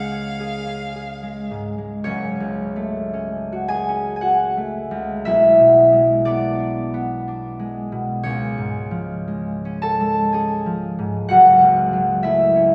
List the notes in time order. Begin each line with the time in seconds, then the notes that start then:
Already playing: C#2 G#3 C#4 G#4 F5
0.12 C#5
0.40 G#4
0.67 C#4
0.95 G#4
1.23 G#3
1.51 G#2
1.78 G#3
2.04 F#1 C#4 C#5
2.40 C#2
2.76 A3
3.13 C#4
3.52 F#4
3.68 G#4 G#5
3.88 C#4
4.16 G#5
4.21 F#4 F#5
4.57 A3
4.91 C#2
5.25 B1 E4 E5
5.60 B2
5.93 G#3
6.25 B3 D4 D5
6.60 D4
6.94 B3
7.28 D4
7.59 G#3
7.92 B2
8.23 C#2 C#4 C#5
8.58 G#2
8.91 F3
9.28 G#3
9.65 C#4
9.82 A4 A5
10.01 G#3
10.32 C#4 G#4 G#5
10.66 F3
10.99 G#2
11.29 F#1 F#4 F#5
11.61 C#2
11.92 F#3
12.23 A3 E4 E5
12.56 C#4